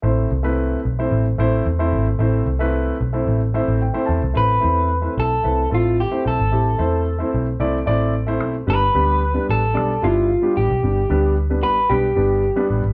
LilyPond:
<<
  \new Staff \with { instrumentName = "Clean electric guitar" } { \time 4/4 \key a \minor \tempo 4 = 111 r1 | r1 | b'4. a'4 f'8 g'8 a'8~ | a'4. r2 r8 |
b'4. a'4 f'4 g'8~ | g'4 r8 b'8 g'4. r8 | }
  \new Staff \with { instrumentName = "Grand piano" } { \time 4/4 \key a \minor << { r1 | r2 r8 e''8 g''8 a''8 | r1 | r1 |
r1 | r1 | } \\ { <a c' e' c''>8 r16 <a c' e' b'>8. r16 <a c' e' c''>8 r16 <a c' e' c''>8 r16 <a c' e' c''>8 r16 | <a c' e' c''>8 r16 <a c' e' b'>8. r16 <a c' e' c''>8 r16 <a c' e' c''>8 r16 <a c' e' c''>8 r16 | <a c' e' c''>16 r16 <a c' e' c''>8 r16 <a c' e' c''>8 r16 <a c' e' b'>16 r16 <a c' e' a'>8 r16 <a c' e' c''>8 r16 | <a c' e' g'>16 r16 <a c' e' c''>8 r16 <a c' e' c''>8 r16 <a c' e' d''>16 r16 <a c' e' d''>8 r16 <a c' e' c''>8 r16 |
<g b d' b'>16 r16 <g b d' b'>8 r16 <g b d' b'>8 r16 <g b d' d''>16 r16 <g b d' e'>8 r16 <g b d' g'>8 r16 | <g b d' g'>16 r16 <g b d' b'>8 r16 <g b d' b'>8 r16 <g b d' b'>16 r16 <g b d' b'>8 r16 <g b d' b'>8 r16 | } >> }
  \new Staff \with { instrumentName = "Picked electric bass" } { \clef bass \time 4/4 \key a \minor a,,8 c,4 b,,8 a,,8 a,,8 e,8 gis,,8 | a,,8 c,4 b,,8 a,,8. a,,8 r16 e,16 c,16 | a,,8 e,4 b,,8 c,8 a,,8. r16 b,,16 gis,,16 | a,,8 e,4 b,,8 c,8 a,,4 b,,8 |
g,,8 d,4 a,,8 b,,8 g,,8. r16 a,,16 b,,16 | g,,8 d,4 a,,8 b,,8 g,,8. r16 a,,16 gis,,16 | }
>>